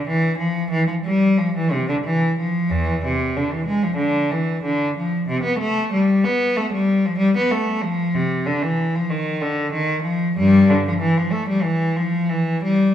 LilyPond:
\new Staff \with { instrumentName = "Cello" } { \clef bass \time 4/4 \key e \phrygian \tempo 4 = 93 e8 f8 e16 f16 g8 f16 e16 c16 d16 e8 f8 | <e, e>8 c8 d16 e16 gis16 f16 d8 e8 d8 f8 | c16 b16 a8 g8 b8 a16 g8 f16 g16 b16 a8 | f8 c8 d16 e8 f16 ees8 d8 ees8 f8 |
<g, g>8 d16 f16 e16 f16 a16 g16 e8 f8 e8 g8 | }